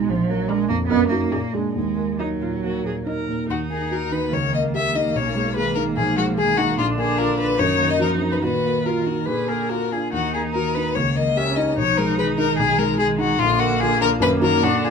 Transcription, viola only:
0.50 0.81 A#4 medium
0.90 1.21 A#4 medium
1.32 1.64 G#4 medium
2.19 2.27 D#4 medium
2.41 2.49 F4 soft
2.64 2.86 F#4 medium
2.86 2.94 G#4 soft
3.08 3.50 A#4 medium
3.51 4.30 D#4 soft
4.34 6.80 A#3 medium
6.78 7.59 D4 medium
7.59 8.44 D#4 medium
8.42 8.81 F#4 medium
8.84 9.08 F4 medium
9.06 9.26 F#4 soft
9.27 9.50 G#4 medium
9.49 9.71 A#4 soft
9.69 9.92 F#4 medium
9.91 10.11 F4 soft
10.12 10.98 D#4 medium
10.96 11.39 A#3 medium
11.38 11.77 C#4 medium
11.78 12.61 D#4 medium
12.60 13.40 G#3 medium
13.41 14.64 A#3 medium
14.62 14.90 D4 medium

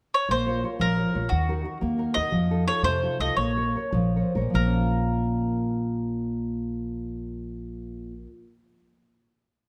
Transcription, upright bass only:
0.29 0.62 A#1 medium
0.80 1.02 A#1 medium
1.15 1.25 A#1 medium
1.31 1.64 D#2 medium
1.82 2.04 D#2 medium
2.16 2.27 D#2 medium
2.32 2.65 F2 medium
2.83 3.06 F2 medium
3.19 3.31 C2 medium
3.37 3.74 A#1 medium
3.93 4.20 A#1 medium
4.35 4.49 A#1 medium
4.54 8.26 A#1 medium

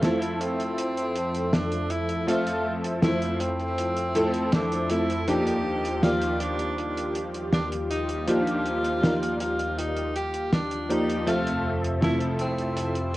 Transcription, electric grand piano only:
0.01 2.23 F3 medium
0.01 2.23 A3 medium
0.01 2.23 C4 medium
0.01 2.24 E4 medium
0.01 2.24 A4 medium
2.27 2.98 F3 medium
2.27 2.98 A3 medium
2.27 2.98 C4 medium
2.27 2.99 A4 medium
2.27 2.99 E5 medium
3.02 4.10 F3 medium
3.02 4.11 A3 medium
3.02 4.11 C4 medium
3.02 4.11 E4 medium
3.02 4.12 C5 medium
4.15 4.86 F3 medium
4.15 4.86 A3 medium
4.15 4.86 C4 medium
4.15 4.86 E4 medium
4.15 4.86 A4 loud
4.90 5.23 F3 medium
4.90 5.23 A3 medium
4.90 5.23 C4 medium
4.90 5.24 E4 medium
4.90 5.24 A4 medium
5.27 5.98 F3 medium
5.27 5.98 A#3 medium
5.27 5.99 D4 medium
5.27 5.99 D#4 medium
5.27 5.99 G4 loud
6.02 8.24 D#3 medium
6.02 8.23 F3 medium
6.02 8.23 A#3 medium
6.02 8.24 G4 medium
6.02 8.23 D5 medium
8.27 8.98 F3 medium
8.27 8.98 A#3 medium
8.27 8.98 D4 medium
8.27 8.99 D#4 medium
8.27 8.99 G4 medium
9.01 10.10 F3 medium
9.01 10.10 A#3 medium
9.01 10.11 D#4 medium
9.01 10.12 A#4 medium
9.01 10.11 D5 medium
10.89 11.22 F3 medium
10.89 11.22 A#3 medium
10.89 11.22 D#4 medium
10.89 11.22 G4 medium
10.89 11.22 D5 medium
11.26 11.98 F3 medium
11.26 11.98 A3 medium
11.26 11.98 C4 medium
11.26 11.98 A4 loud
11.26 11.98 E5 medium
12.01 13.17 F3 medium
12.01 13.17 A3 medium
12.01 13.17 C4 medium
12.01 13.17 E4 medium
12.01 13.17 A4 medium

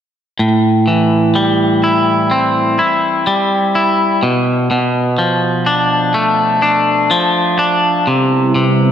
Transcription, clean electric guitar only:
0.39 2.79 A2 soft
0.88 3.28 E3 soft
1.35 3.26 G3 soft
1.84 2.78 E4 soft
2.31 4.23 C4 soft
2.79 3.74 E4 soft
3.27 4.23 G3 soft
3.75 4.23 E4 soft
4.23 4.70 B2 soft
4.71 7.11 B2 soft
5.18 7.10 F3 soft
5.66 6.61 D4 soft
6.14 8.07 A3 soft
6.62 7.58 D4 soft
7.11 8.07 F3 soft
7.59 8.07 D4 soft
8.07 8.54 C3 soft
8.55 8.92 C3 soft

